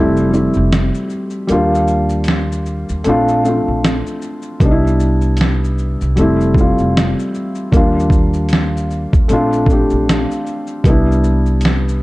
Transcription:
Already playing: F1 G3 A3 C4
0.00 E4
0.17 shaker
0.30 G3 A3 C4, shaker
0.34 E4
0.54 F1, shaker
0.73 finger snap, snare, closed hi-hat, shaker
0.95 shaker
1.10 shaker
1.30 shaker
1.47 D#2 G3 A#3 D4, closed hi-hat, shaker
1.52 F4
1.75 shaker
1.88 shaker
2.09 shaker
2.24 closed hi-hat, shaker
2.28 finger snap, snare
2.52 shaker
2.66 shaker
2.89 D#2, shaker
3.04 A#1 A3 C4 D4, closed hi-hat, shaker
3.09 F4
3.28 shaker
3.43 A3 C4 D4, shaker
3.48 F4
3.68 A#1
3.85 finger snap, snare, closed hi-hat, shaker
4.07 shaker
4.22 shaker
4.42 shaker
4.60 C2 G3 B3 D4, kick, closed hi-hat, shaker
4.65 D#4
4.71 E4
4.87 shaker
5.00 shaker
5.21 shaker
5.37 closed hi-hat, shaker
5.41 finger snap, snare
5.64 shaker
5.78 shaker
6.01 C2, shaker
6.16 F1 G3 A3 C4, closed hi-hat, shaker
6.21 E4
6.41 shaker
6.54 G3 A3, kick, shaker
6.59 C4 F4
6.78 F1, shaker
6.97 finger snap, snare, closed hi-hat, shaker
7.19 shaker
7.34 shaker
7.55 shaker
7.71 D#2 G3 A#3 D4, kick, closed hi-hat, shaker
7.77 F4
7.99 shaker
8.10 kick, shaker
8.33 shaker
8.49 closed hi-hat, shaker
8.53 finger snap, snare
8.77 shaker
8.90 shaker
9.13 D#2, kick, shaker
9.28 A#1 A3 C4 D4, closed hi-hat, shaker
9.33 F4
9.53 shaker
9.66 A3 C4, kick, shaker
9.71 D4 G4
9.90 A#1, shaker
10.09 finger snap, snare, closed hi-hat, shaker
10.31 shaker
10.47 shaker
10.67 shaker
10.84 C2 G3 B3 D4, kick, closed hi-hat, shaker
10.89 E4
11.12 shaker
11.24 shaker
11.46 shaker
11.61 closed hi-hat, shaker
11.65 finger snap, snare
11.89 shaker

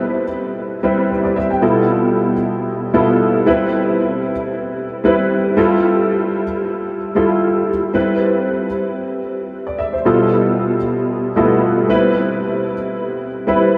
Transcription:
Already playing: G3 C4 E4 B4
0.83 G3 C4 E4 B4
1.10 C5
1.24 D5
1.36 E5
1.50 G5
1.62 B2 G3 B3 E4 F4 A4
2.93 B2 G3 B3 E4 F4 A4
3.46 G3 C4 E4 B4
5.04 G3 C4 E4 B4
5.57 G3 E4 F4 A4
7.15 G3 E4 F4 A4
7.94 G3 C4 E4 B4
9.67 D5
9.78 E5
9.93 C5
10.05 B2 G3 B3 E4 F4 A4
11.36 B2 G3 A3 E4 F4 A4
11.43 B3
11.89 G3 C4 E4 B4
13.47 G3 C4 E4 B4

